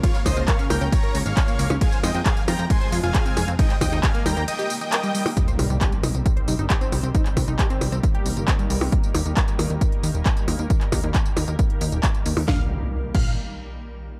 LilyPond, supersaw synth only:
\new Staff \with { instrumentName = "Supersaw synth" } { \time 4/4 \key bes \dorian \tempo 4 = 135 <des'' f''>8 <c'' ees''>8 <des'' f''>8 <bes' g''>8 <des'' bes''>8 r16 <des'' f''>4 r16 | <f'' aes''>8 <ees'' g''>8 <f'' aes''>8 <g'' bes''>8 <aes'' c'''>8 r16 <f'' aes''>4 r16 | <ees'' g''>8 <ees'' g''>8 <f'' aes''>8 <g'' bes''>8 <ees'' g''>8 r16 <ees'' g''>4 r16 | r1 |
r1 | r1 | r1 | f''16 r4 r16 f''8 r2 | }